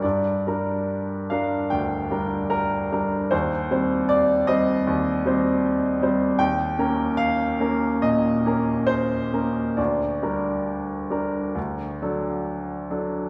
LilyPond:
\new Staff \with { instrumentName = "Grand piano" } { \time 4/4 \key g \minor \tempo 4 = 73 << { d''4. f''8 g''4 bes'4 | c''4 d''8 ees''2~ ees''8 | g''4 f''4 ees''4 c''4 | d''2. r4 | } \\ { g,8 <g d' bes'>4 <g d' bes'>8 d,8 <g d' bes'>4 <g d' bes'>8 | ees,8 <g c' c''>4 <g c' c''>8 ees,8 <g c' c''>4 <g c' c''>8 | ees,8 <bes des' bes'>4 <bes des' bes'>8 bes,8 <bes des' bes'>4 <bes des' bes'>8 | d,8 <g d' bes'>4 <g d' bes'>8 d,8 <fis d' a'>4 <fis d' a'>8 | } >> }